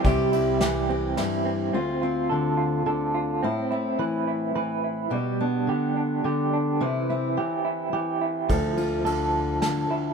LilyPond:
<<
  \new Staff \with { instrumentName = "Clean electric guitar" } { \time 3/4 \key d \dorian \tempo 4 = 106 <g g'>8 e'8 g'8 c'8 e'8 c'8 | c'8 f'8 a'8 f'8 a'8 f'8 | c'8 e'8 b'8 e'8 b'8 e'8 | g8 d'8 g'8 d'8 g'8 d'8 |
e8 e'8 g'8 e'8 g'8 e'8 | f4 a'4 a'8 e'8 | }
  \new Staff \with { instrumentName = "Steel-string acoustic guitar" } { \clef bass \time 3/4 \key d \dorian << { <g g'>8 e'4 g'4. | f'8 c'2~ c'8 | e'8 c'2~ c'8 | g'8 b2~ b8 |
e'8 c'2~ c'8 | a'8 f'2~ f'8 | } \\ { c4 e4 g,4 | d,4 d4 d4 | a,4 e4 e4 | b,4 d4 d4 |
c4 e4 e4 | d,4 d4. d,8 | } >> }
  \new Staff \with { instrumentName = "Upright bass" } { \clef bass \time 3/4 \key d \dorian c,2 r4 | r2. | r2. | r2. |
r2. | d,2 r4 | }
  \new DrumStaff \with { instrumentName = "Drums" } \drummode { \time 3/4 <bd cymr>8 cymr8 <cymr sn>4 <cymr sn>4 | r4 r4 r4 | r4 r4 r4 | r4 r4 r4 |
r4 r4 r4 | <bd cymr>8 cymr8 cymr4 <cymr sn>4 | }
>>